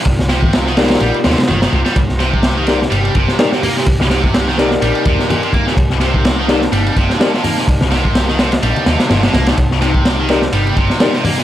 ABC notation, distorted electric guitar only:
X:1
M:4/4
L:1/16
Q:"Swing 16ths" 1/4=126
K:Cdor
V:1 name="Distorted electric guitar" clef=bass
z2 C,3 E, B,,2 G, z C, z E, E, C, G, | z2 C,3 E, C, z G,2 C,2 B,, C, B, B,, | z2 C,3 E, C, z G,2 C,2 B,, C, B, B,, | z2 C,3 E, C, z G,2 C,2 B,, C, B, B,, |
z2 C,3 E, C, z G,2 C,2 B,, C, B, B,, | z2 C,3 E, C, z G,2 C,2 B,, C, B, B,, |]